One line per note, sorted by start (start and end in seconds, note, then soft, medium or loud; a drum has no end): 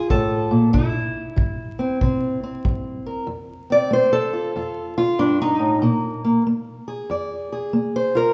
0.00 0.52 F4 medium
0.00 0.10 G#4 medium
0.10 0.51 A2 medium
0.10 0.73 A4 medium
0.10 kick medium
0.51 0.73 A#2 medium
0.73 1.33 C3 medium
0.73 3.28 E4 medium
0.73 kick medium
1.36 1.96 G3 medium
1.36 kick medium
1.79 2.01 C4 soft
2.01 2.60 C3 medium
2.01 2.42 C4 soft
2.01 kick medium
2.43 3.26 C4 soft
2.65 3.24 G3 medium
2.65 kick medium
3.06 3.26 A#4 soft
3.27 3.86 F2 medium
3.70 4.12 C4 soft
3.70 3.92 D5 medium
3.91 4.50 A3 medium
3.91 4.13 C5 medium
4.13 4.97 A4 loud
4.33 4.56 F4 soft
4.56 5.14 F2 medium
4.56 4.97 F4 soft
4.98 5.19 F4 medium
5.19 5.59 G2 medium
5.19 5.40 D4 medium
5.42 5.83 D#4 medium
5.59 5.82 A2 medium
5.82 6.41 A#2 medium
5.82 6.23 A#3 soft
6.24 6.45 A#3 soft
6.47 7.05 A#3 medium
6.88 7.50 G#4 soft
7.10 7.68 F2 medium
7.10 7.94 D5 soft
7.52 8.16 G#4 soft
7.73 8.31 A#3 medium
7.96 8.16 C5 medium
8.15 8.34 F4 soft
8.15 8.34 A#4 medium